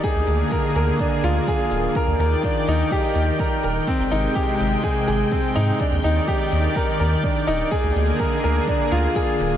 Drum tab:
SH |xxxxxxxx|xxxxxxxx|xxxxxxxx|xxxxxxxx|
BD |o-o-o-o-|o-o-o-o-|o-o-o-o-|o-o-o-o-|

SH |xxxxxxxx|
BD |o-o-o-o-|